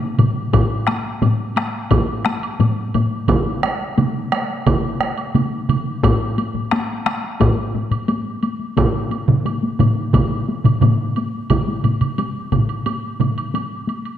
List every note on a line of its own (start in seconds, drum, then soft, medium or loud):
0.02 taiko high soft
0.18 taiko low-mid loud
0.18 taiko mid medium
0.18 taiko high medium
0.18 high woodblock soft
0.37 taiko high soft
0.53 taiko loud
0.53 taiko low-mid medium
0.53 taiko high medium
0.53 high woodblock medium
0.71 taiko high soft
0.87 taiko rim medium
0.87 taiko high medium
0.87 high woodblock soft
1.06 taiko high soft
1.22 taiko low-mid medium
1.22 taiko high medium
1.22 high woodblock soft
1.56 taiko rim medium
1.56 taiko high medium
1.56 high woodblock soft
1.75 taiko high soft
1.91 taiko loud
1.91 taiko low-mid loud
1.91 taiko high medium
1.91 high woodblock medium
2.09 taiko high soft
2.26 taiko rim medium
2.26 taiko high medium
2.43 taiko high soft
2.43 high woodblock soft
2.60 taiko low-mid medium
2.60 taiko high medium
2.60 high woodblock soft
2.77 taiko high soft
2.94 taiko low-mid loud
2.94 taiko high medium
2.94 high woodblock soft
3.12 taiko high soft
3.28 taiko loud
3.28 taiko mid medium
3.28 taiko high medium
3.28 high woodblock soft
3.46 taiko high soft
3.63 taiko rim medium
3.63 taiko high medium
3.63 high woodblock soft
3.81 taiko high soft
3.98 taiko mid loud
3.98 taiko high medium
3.98 high woodblock soft
4.32 taiko rim medium
4.32 taiko high medium
4.32 high woodblock soft
4.49 taiko high soft
4.66 taiko loud
4.66 taiko mid loud
4.66 taiko high medium
4.66 high woodblock soft
4.84 taiko high soft
5.00 taiko rim medium
5.00 taiko high medium
5.17 taiko high soft
5.17 high woodblock soft
5.35 taiko mid loud
5.35 taiko high medium
5.35 high woodblock soft
5.52 taiko high soft
5.69 taiko mid loud
5.69 taiko high medium
5.69 high woodblock soft
5.87 taiko high soft
6.03 taiko loud
6.03 taiko low-mid medium
6.03 taiko high medium
6.03 high woodblock medium
6.21 taiko high soft
6.38 taiko high soft
6.38 high woodblock soft
6.55 taiko low-mid medium
6.55 taiko high soft
6.71 taiko rim medium
6.71 taiko high medium
6.71 high woodblock soft
7.06 taiko rim medium
7.06 taiko high medium
7.06 high woodblock soft
7.23 taiko high soft
7.40 taiko loud
7.40 taiko low-mid medium
7.40 taiko high medium
7.40 high woodblock medium
7.58 taiko high soft
7.75 taiko low-mid medium
7.75 taiko high soft
7.91 taiko low-mid medium
7.91 taiko high soft
7.91 high woodblock soft
8.08 taiko high medium
8.08 high woodblock soft
8.25 taiko high soft
8.43 taiko high medium
8.43 high woodblock soft
8.59 taiko high soft
8.77 taiko loud
8.77 taiko low-mid loud
8.77 taiko mid medium
8.77 taiko high medium
8.77 high woodblock medium
8.94 taiko high soft
9.11 taiko high medium
9.11 high woodblock soft
9.28 taiko low-mid medium
9.28 taiko mid loud
9.28 taiko high soft
9.45 taiko high medium
9.45 high woodblock soft
9.63 taiko high medium
9.79 taiko low-mid loud
9.79 taiko mid medium
9.79 taiko high medium
9.79 high woodblock soft
9.98 taiko high soft
10.13 taiko medium
10.13 taiko low-mid loud
10.13 taiko mid loud
10.13 taiko high medium
10.13 high woodblock medium
10.32 taiko high soft
10.49 taiko high medium
10.64 taiko low-mid medium
10.64 taiko mid medium
10.64 taiko high soft
10.64 high woodblock soft
10.81 taiko low-mid loud
10.81 taiko mid loud
10.81 taiko high medium
10.81 high woodblock soft
11.00 taiko high soft
11.16 taiko high medium
11.16 high woodblock soft
11.34 taiko high soft
11.50 taiko medium
11.50 taiko low-mid medium
11.50 taiko mid medium
11.50 taiko high medium
11.50 high woodblock medium
11.68 taiko high soft
11.84 taiko low-mid medium
11.84 taiko mid medium
11.84 taiko high soft
11.84 high woodblock soft
12.01 taiko low-mid medium
12.01 taiko mid medium
12.01 taiko high soft
12.01 high woodblock soft
12.18 taiko high medium
12.18 high woodblock soft
12.35 taiko high soft
12.52 taiko medium
12.52 taiko low-mid medium
12.52 taiko mid medium
12.52 taiko high soft
12.52 high woodblock soft
12.69 taiko high soft
12.69 high woodblock soft
12.86 taiko high medium
12.86 high woodblock soft
13.04 taiko high soft
13.20 taiko low-mid medium
13.20 taiko mid medium
13.20 taiko high soft
13.20 high woodblock soft
13.37 taiko high soft
13.37 high woodblock soft
13.54 taiko high medium
13.54 high woodblock soft
13.71 taiko high soft
13.87 taiko high soft
13.87 high woodblock soft
14.05 taiko high soft
14.05 high woodblock soft